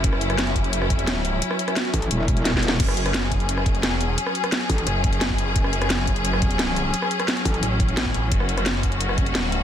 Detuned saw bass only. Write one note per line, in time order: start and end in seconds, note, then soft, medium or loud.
0.04 1.03 F#1 loud
1.03 1.25 E1 loud
1.25 1.41 D1 loud
2.80 3.76 F#1 loud
3.76 4.03 F1 loud
4.03 4.16 E1 loud
4.87 5.37 F#1 loud
5.38 5.54 F#1 loud
5.56 6.92 F#1 loud
7.63 8.13 A1 loud
8.14 8.30 A1 loud
8.32 9.31 F#1 loud
9.31 9.53 E1 loud
9.53 9.63 D1 loud